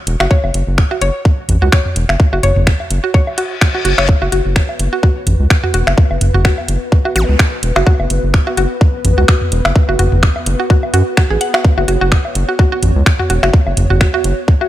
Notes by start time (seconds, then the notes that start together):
0.07 E1, closed hi-hat
0.20 F#1 F#4, finger snap, low woodblock
0.31 C#5, kick
0.44 F#1, low woodblock
0.54 F#1, closed hi-hat
0.67 F#1
0.78 finger snap, kick
0.91 F#4, low woodblock
1.01 F#1 C#5, closed hi-hat
1.25 kick
1.49 A1, closed hi-hat, mid tom
1.62 C#2 F#4
1.72 C#5, finger snap, kick
1.85 mid tom
1.96 E1, closed hi-hat
2.09 F#1, finger snap, low woodblock
2.20 kick
2.33 F#1 F#4, low woodblock
2.43 F#1 C#5, closed hi-hat, mid tom
2.56 F#1, mid tom
2.67 finger snap, kick
2.80 low woodblock
2.91 F#1, closed hi-hat
3.04 F#4
3.14 C#5, kick, reverse cymbal
3.27 low woodblock
3.38 F#4, closed hi-hat
3.61 finger snap, kick
3.75 F#4
3.85 F#1 F#4, closed hi-hat
3.98 F#1 C#5, finger snap, low woodblock
4.08 B3 B4, kick
4.22 F#1 F#4, low woodblock
4.32 F#1 F#4, closed hi-hat
4.45 F#1
4.56 finger snap, kick
4.69 low woodblock
4.79 F#1, closed hi-hat
4.93 F#4
5.03 F#4, kick
5.27 A1, closed hi-hat, mid tom
5.40 C#2
5.50 finger snap, kick
5.64 F#4, mid tom
5.74 E1 F#4, closed hi-hat
5.87 F#1, finger snap, low woodblock
5.98 kick
6.11 F#1, low woodblock
6.21 F#1, closed hi-hat, mid tom
6.34 F#1 F#4, mid tom
6.45 F#4, finger snap, kick
6.58 low woodblock
6.68 F#1, closed hi-hat
6.92 kick
7.05 F#4, low woodblock
7.16 A1 F#4, closed hi-hat, zap
7.29 C#2
7.39 finger snap, kick
7.63 E1, closed hi-hat
7.76 F#1 F#4, finger snap, low woodblock
7.87 F#4, kick
8.00 F#1, low woodblock
8.10 F#1, closed hi-hat
8.23 F#1
8.34 finger snap, kick
8.47 F#4, low woodblock
8.57 F#1 F#4, closed hi-hat
8.81 kick
9.05 A1, closed hi-hat, mid tom
9.18 C#2 F#4
9.28 F#4, finger snap, kick
9.41 mid tom
9.52 E1, closed hi-hat
9.65 F#1, finger snap, low woodblock
9.76 kick
9.89 F#1 F#4, low woodblock
9.99 F#1 F#4, closed hi-hat, mid tom
10.12 F#1, mid tom
10.23 finger snap, kick
10.36 low woodblock
10.46 F#1, closed hi-hat
10.60 F#4
10.70 F#4, kick
10.83 low woodblock
10.94 F#2 F#4, closed hi-hat
11.17 F#4, finger snap, kick
11.30 A1 G#4
11.41 F#5, closed hi-hat
11.54 F#4, finger snap, low woodblock
11.65 C#5, kick
11.78 F#1 F#4, low woodblock
11.88 F#1 F#4, closed hi-hat
12.01 F#1 F#4
12.12 finger snap, kick
12.25 low woodblock
12.35 F#1, closed hi-hat
12.49 F#4
12.59 F#4, kick
12.72 F#4
12.83 A1, closed hi-hat, mid tom
12.96 C#2
13.06 finger snap, kick
13.19 F#4, mid tom
13.30 E1 F#4, closed hi-hat
13.43 F#1 F#4, finger snap, low woodblock
13.54 kick
13.67 F#1, low woodblock
13.77 F#1, closed hi-hat, mid tom
13.90 F#1 F#4, mid tom
14.01 F#4, finger snap, kick
14.14 F#4, low woodblock
14.24 F#1, closed hi-hat
14.48 kick
14.61 F#4, low woodblock